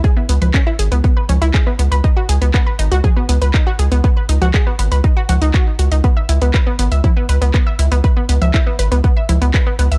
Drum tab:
HH |x-xxx-xxx-xxx-xx|x-xxx-xxx-xxx-xx|x-xxx-xxx-xxx-xx|x-xxx-xxx-xxx-xx|
CP |----x-------x---|----x-------x---|----x-------x---|----x-------x---|
CG |---O------O-----|--------O-------|---O------O-----|--------O-------|
BD |o---o---o---o---|o---o---o---o---|o---o---o---o---|o---o---o---o---|

HH |x-xxx-xxx-xxx-xx|
CP |----x-------x---|
CG |---O------O-----|
BD |o---o---o---o---|